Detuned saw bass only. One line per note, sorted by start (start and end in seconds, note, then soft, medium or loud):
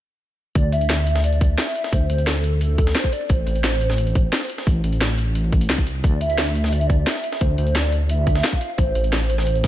0.55 1.57 D2 loud
1.93 2.08 D2 loud
2.10 2.94 D2 loud
3.30 3.45 A1 loud
3.47 4.31 A1 loud
4.67 4.82 A1 loud
4.84 5.68 A1 medium
5.70 6.03 C2 medium
6.04 7.05 D2 loud
7.41 7.57 D2 loud
7.58 8.43 D2 loud
8.78 8.94 A1 loud
8.95 9.67 A1 loud